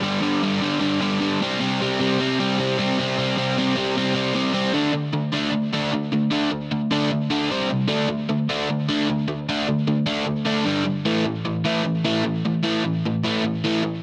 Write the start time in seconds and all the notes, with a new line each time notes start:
0.02 G2 D3 G3
0.21 G2 D3 G3
0.43 G2 D3 G3
0.61 G2 D3 G3
0.80 G2 D3 G3
1.01 G2 D3 G3
1.20 G2 D3 G3
1.42 C3 G3 C4
1.60 C3 G3 C4
1.81 C3 G3 C4
1.99 C3 G3 C4
2.19 C3 G3 C4
2.39 C3 G3 C4
2.58 C3 G3 C4
2.78 C3 G3 C4
2.99 C3 G3 C4
3.18 C3 G3 C4
3.36 C3 G3 C4
3.58 C3 G3 C4
3.76 C3 G3 C4
3.97 C3 G3 C4
4.14 C3 G3 C4
4.34 C3 G3 C4
4.53 C3 G3 C4
4.73 D3 A3 D4
4.93 D3 A3
5.13 D3 A3
5.32 D3 A3 D4
5.51 D3 A3
5.73 D3 A3 D4
5.93 D3 A3
6.12 D3 A3
6.31 D3 A3 D4
6.51 D3 A3
6.71 D3 A3
6.91 D3 A3 D4
7.11 D3 A3
7.30 D3 A3 D4
7.51 C3 G3 C4
7.70 C3 G3
7.88 D3 A3 D4
8.09 D3 A3
8.29 D3 A3
8.49 D3 A3 D4
8.70 D3 A3
8.88 D3 A3 D4
9.09 D3 A3
9.28 D3 A3
9.49 D3 A3 D4
9.68 D3 A3
9.87 D3 A3
10.06 D3 A3 D4
10.26 D3 A3
10.45 D3 A3 D4
10.65 G2 D3 G3
10.85 G2 D3
11.05 A2 E3 A3
11.25 A2 E3
11.45 A2 E3
11.65 A2 E3 A3
11.84 A2 E3
12.05 A2 E3 A3
12.24 A2 E3
12.45 A2 E3
12.63 A2 E3 A3
12.84 A2 E3
13.05 A2 E3
13.24 A2 E3 A3
13.44 A2 E3
13.64 A2 E3 A3
13.84 A2 E3